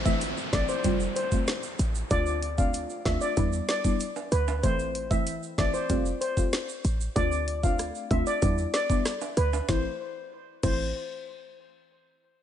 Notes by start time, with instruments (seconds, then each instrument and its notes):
Already playing: 808-style bass A1, downlifter
0.05 synth stab E3 A3 C4 E4, steel pan E5, kick, shaker
0.21 closed hi-hat, shaker
0.37 shaker
0.53 808-style bass A1, synth stab E3 A3 C4 E4, steel pan D5, kick, snare, closed hi-hat
0.69 steel pan C5, shaker
0.84 808-style bass F1, synth stab G3 A3 C4 F4, kick, closed hi-hat, shaker
1.00 shaker
1.16 steel pan C5, closed hi-hat, shaker
1.32 synth stab G3 A3 C4 F4, kick, shaker
1.47 snare, closed hi-hat, shaker
1.63 shaker
1.79 808-style bass A1, closed hi-hat, shaker
1.95 shaker
2.11 808-style bass D2, synth stab A3 C4 D4 F4, steel pan D5, kick, closed hi-hat, shaker
2.26 shaker
2.42 closed hi-hat
2.58 synth stab A3 C4 D4 F4, steel pan F5, kick, shaker
2.74 closed hi-hat, shaker
2.90 shaker
3.05 808-style bass D2, synth stab A3 C4 D4 F4, steel pan E5, kick, snare, closed hi-hat
3.21 steel pan D5, shaker
3.37 808-style bass E2, synth stab G3 B3 D4 E4, kick, closed hi-hat, shaker
3.53 shaker
3.69 steel pan D5, snare, closed hi-hat, shaker
3.84 synth stab G3 B3 D4 E4, kick, shaker
4.00 closed hi-hat, shaker
4.16 high timbale, shaker
4.32 808-style bass D2, steel pan B4, closed hi-hat, shaker
4.48 high timbale, shaker
4.63 808-style bass A1, synth stab E3 A3 C4 E4, steel pan C5, kick, closed hi-hat, shaker
4.79 shaker
4.95 closed hi-hat
5.11 synth stab E3 A3 C4 E4, steel pan E5, kick, shaker
5.27 closed hi-hat, shaker
5.43 shaker
5.58 808-style bass A1, synth stab E3 A3 C4 E4, steel pan D5, kick, snare, closed hi-hat
5.74 steel pan C5, shaker
5.89 808-style bass F1, synth stab G3 A3 C4 F4, kick, closed hi-hat, shaker
6.06 shaker
6.21 steel pan C5, closed hi-hat, shaker
6.37 synth stab G3 A3 C4 F4, kick, shaker
6.53 snare, closed hi-hat, shaker
6.69 shaker
6.85 808-style bass A1, closed hi-hat, shaker
7.01 shaker
7.16 808-style bass D2, synth stab A3 C4 D4 F4, steel pan D5, kick, closed hi-hat, shaker
7.32 shaker
7.48 closed hi-hat
7.63 synth stab A3 C4 D4 F4, steel pan F5, kick, shaker
7.79 cross-stick, closed hi-hat, shaker
7.95 shaker
8.11 808-style bass D2, synth stab A3 C4 D4 F4, steel pan E5, kick, closed hi-hat
8.27 steel pan D5, shaker
8.42 808-style bass E2, synth stab G3 B3 D4 E4, kick, closed hi-hat, shaker
8.58 shaker
8.74 steel pan D5, snare, closed hi-hat, shaker
8.90 synth stab G3 B3 D4 E4, kick, shaker
9.06 cross-stick, snare, closed hi-hat, shaker
9.21 high timbale, shaker
9.37 808-style bass D2, steel pan B4, closed hi-hat, shaker
9.53 high timbale, shaker
9.68 808-style bass A1, synth stab E3 A3 C4 E4, steel pan C5, kick, snare, shaker
10.63 808-style bass A1, synth stab E3 A3 C4 E4, steel pan C5, kick, crash, shaker